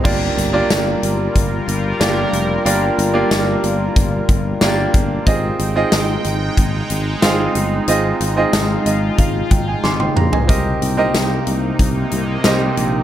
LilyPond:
<<
  \new Staff \with { instrumentName = "Grand piano" } { \time 4/4 \key g \phrygian \tempo 4 = 92 << { r1 | r1 | r1 | r4. ees''8 f''8 g''16 aes''16 <aes'' c''' d'''>16 <g'' c'''>16 bes''16 <ees'' aes''>16~ |
<ees'' aes''>16 r2. r8. | } \\ { <bes d' f' g' d''>8 r16 <bes d' f' g' d''>4. r8. <bes d' f' g' d''>8. r16 | <bes d' f' g' d''>8 r16 <bes d' f' g' d''>4. r8. <bes d' f' g' d''>8. r16 | <c' ees' f' aes' ees''>8 r16 <c' ees' f' aes' ees''>4. r8. <c' ees' f' aes' f''>8. r16 | <c' ees' f' aes' ees''>8 r16 <c' ees' f' aes' ees''>4. r4. r16 |
<c' ees' g' bes' ees''>8 r16 <c' ees' g' bes' ees''>4. r8. <c' ees' g' bes' ees''>8. r16 | } >> }
  \new Staff \with { instrumentName = "Analog synth pad" } { \time 4/4 \key g \phrygian << { bes'1~ | bes'1 | g''1 | f'1 |
ees'1 | } \\ { <g f'>1~ | <g f'>1 | <aes ees'>1~ | <aes ees'>1 |
<c bes>1 | } >> }
  \new Staff \with { instrumentName = "Fretless electric bass" } { \clef bass \time 4/4 \key g \phrygian g,,8 g,,8 g,,8 g,,8 g,,8 g,,8 g,,8 f,,8 | g,,8 g,,8 g,,8 g,,8 g,,8 g,,8 g,,8 g,,8 | aes,,8 aes,,8 aes,,8 aes,,8 aes,,8 aes,,8 aes,,8 g,,8 | aes,,8 aes,,8 aes,,8 aes,,8 aes,,8 aes,,8 aes,,8 bes,,8 |
c,8 c,8 c,8 c,8 c,8 c,8 c,8 bes,,8 | }
  \new DrumStaff \with { instrumentName = "Drums" } \drummode { \time 4/4 <cymc bd>8 hh8 <hh sn tamb>8 hh8 <hh bd>8 hh8 <hh sn tamb>8 hh8 | hh8 hh8 <hh sn tamb>8 hh8 <hh bd>8 <hh bd>8 <hh sn tamb>8 <hh bd>8 | <hh bd>8 hh8 <hh sn tamb>8 hh8 <hh bd>8 hh8 <hh sn tamb>8 hh8 | hh8 hh8 <hh sn tamb>8 hh8 <hh bd>8 <hh bd>8 sn16 tommh16 toml16 tomfh16 |
<hh bd>8 hh8 <hh sn tamb>8 hh8 <hh bd>8 hh8 <hh sn tamb>8 hh8 | }
>>